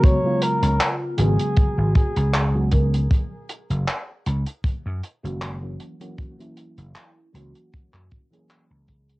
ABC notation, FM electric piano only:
X:1
M:4/4
L:1/16
Q:"Swing 16ths" 1/4=78
K:F#
V:1 name="FM electric piano"
[C,F,G,B,F] [C,F,G,B,E]4- [C,F,G,B,E] [C,F,G,B,F]4- [C,F,G,B,F] z2 [C,F,G,B,F] [C,F,G,B,A] z | z8 z3 [D,G,A,CF]2 [=E,F,A,CF]2 [E,F,A,CF]- | [=E,F,A,CF] [E,F,A,C=E]4- [E,F,A,CE] [E,F,A,CF]4- [E,F,A,CF] [E,F,A,CG]4- [E,F,A,CG] |]